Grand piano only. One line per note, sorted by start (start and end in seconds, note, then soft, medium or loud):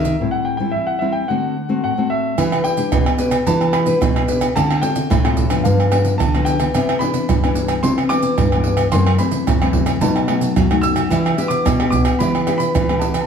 0.00 0.29 E5 medium
0.31 0.46 F#5 medium
0.45 0.56 G5 medium
0.57 0.71 G5 medium
0.71 0.87 E5 medium
0.87 1.01 F#5 medium
0.99 1.13 E5 medium
1.12 1.28 G5 medium
1.28 1.82 F#5 medium
1.84 2.09 F#5 medium
2.10 2.66 E5 medium
2.64 3.15 G5 medium
3.47 3.75 A5 medium
3.73 4.51 B5 loud
4.56 4.84 A5 loud
4.82 5.33 G5 loud
5.64 6.15 F5 medium
6.18 6.44 A5 medium
6.45 7.02 G5 loud
6.99 7.51 B5 loud
7.83 7.89 C6 loud
8.09 8.94 D6 loud
8.92 9.18 C6 loud
9.18 9.70 B5 medium
10.01 10.79 A5 medium
10.81 11.53 E6 loud
11.48 11.88 D6 medium
11.90 11.97 D6 medium
12.19 12.56 B5 medium
12.58 13.02 B5 loud
12.99 13.04 A5 medium
13.21 13.27 A5 medium